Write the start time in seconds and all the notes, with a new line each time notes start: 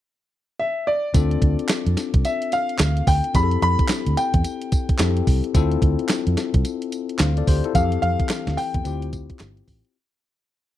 0.59 E5
0.87 D5
1.14 D2 C4 D4 F4 A4, kick, closed hi-hat, tambourine
1.31 closed hi-hat
1.42 D2, kick, closed hi-hat
1.59 closed hi-hat
1.69 snare, clap, closed hi-hat, tambourine
1.86 F2, closed hi-hat
1.97 snare, closed hi-hat, tambourine
2.14 C2, kick, closed hi-hat
2.25 E5, closed hi-hat, tambourine
2.42 closed hi-hat
2.52 F5, closed hi-hat, tambourine
2.69 closed hi-hat
2.79 D2, snare, clap, closed hi-hat, tambourine
2.97 closed hi-hat
3.07 D2 G5, kick, open hi-hat, tambourine
3.24 closed hi-hat
3.34 F2 C4 E4 G4 G#4 B5, kick, closed hi-hat, tambourine
3.43 A4
3.51 closed hi-hat
3.62 F2 B5, closed hi-hat
3.79 kick, closed hi-hat
3.89 snare, clap, closed hi-hat, tambourine
4.07 D2, closed hi-hat
4.17 G5, closed hi-hat, tambourine
4.34 E2, kick, closed hi-hat
4.45 closed hi-hat, tambourine
4.62 closed hi-hat
4.72 kick, closed hi-hat, tambourine
4.89 kick, closed hi-hat
4.99 F2 C4 E4 G4 A4, snare, clap, closed hi-hat, tambourine
5.17 closed hi-hat
5.27 C2, kick, open hi-hat, tambourine
5.44 closed hi-hat
5.54 D2 C4 E4 F4 A4, kick, closed hi-hat, tambourine
5.72 closed hi-hat
5.82 D2, kick, closed hi-hat
5.99 closed hi-hat
6.09 snare, clap, closed hi-hat, tambourine
6.27 F2, closed hi-hat
6.37 snare, closed hi-hat, tambourine
6.54 C2, kick, closed hi-hat
6.65 closed hi-hat, tambourine
6.82 closed hi-hat
6.92 closed hi-hat, tambourine
7.09 closed hi-hat
7.19 D2 C5 F5, snare, clap, closed hi-hat, tambourine
7.37 A4 D5, closed hi-hat
7.47 D2 G4 C5, kick, open hi-hat, tambourine
7.64 E4 A4, closed hi-hat
7.75 F2 E3 C4 G4 A4 F5, kick, closed hi-hat, tambourine
7.92 closed hi-hat
8.02 F2 F5, closed hi-hat
8.20 kick, closed hi-hat
8.29 snare, clap, closed hi-hat, tambourine
8.47 D2, snare, closed hi-hat
8.57 G5, open hi-hat, tambourine
8.74 E2, kick, closed hi-hat
8.84 D2 C4 E4 F4 G4, closed hi-hat, tambourine
9.02 closed hi-hat
9.13 kick, closed hi-hat, tambourine
9.30 kick, closed hi-hat
9.39 G1, snare, clap, closed hi-hat, tambourine
9.57 closed hi-hat
9.68 A1, kick, open hi-hat, tambourine
9.85 closed hi-hat